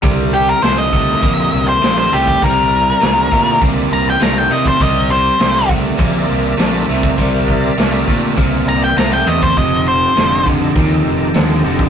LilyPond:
<<
  \new Staff \with { instrumentName = "Lead electric guitar" } { \time 4/4 \key c \mixolydian \tempo 4 = 101 r8 g'16 bes'16 c''16 ees''4. c''8 c''16 g'8 | bes'2 r8 bes''16 g''16 bes''16 g''16 ees''16 c''16 | ees''8 c''4 r2 r8 | r2 r8 bes''16 g''16 bes''16 g''16 ees''16 c''16 |
ees''8 c''4 r2 r8 | }
  \new Staff \with { instrumentName = "Tonewheel organ" } { \time 4/4 \key c \mixolydian <d e' bes'>1 | <e' bes' d''>1 | <bes' d'' e''>1 | <bes' d'' e''>1 |
<ees' g' a'>1 | }
  \new Staff \with { instrumentName = "Overdriven electric guitar" } { \clef bass \time 4/4 \key c \mixolydian <c g>4 <c a>8 <c a>8 <c bes>4 <c a>8 <c a>8 | <c g>4 <c a>8 <c a>8 <c bes>4 <c a>8 <c a>8 | <c g>4 <c a>8 <c a>8 <c bes>4 <c a>8 <c a>8 | <c g>4 <c a>8 <c a>8 <c bes>4 <c a>8 <c a>8 |
<f, c>4 <f, d>8 <f, d>8 <f, ees>4 <f, d>8 <f, d>8 | }
  \new Staff \with { instrumentName = "Fingered electric bass" } { \clef bass \time 4/4 \key c \mixolydian c,4 c,4 bes,,8 c,8 bes,,8 c,8 | c,4 c,8 bes,8 c,8 c,8 c,8 c8 | c,4 c,4 bes,,8 c,8 bes,,8 c,8 | c,4 c,8 bes,8 c,8 c,8 c,8 e,8 |
f,,4 f,,4 ees,8 f,,8 ees,8 f,,8 | }
  \new DrumStaff \with { instrumentName = "Drums" } \drummode { \time 4/4 <hho bd>4 <hho sn>8 bd8 <hho bd>4 <hho sn>8. bd16 | <hho bd>4 <hho sn>8 bd8 <hho bd>4 <hho sn>8. bd16 | <hho bd>4 <hho sn>8 bd8 <hho bd>4 <hho sn>8. bd16 | <hho bd>8 bd8 <hho sn>8 bd8 <hho bd>4 <hho sn>8. bd16 |
<hho bd>4 <hho sn>8 bd8 <hho bd>4 <hho sn>8. bd16 | }
>>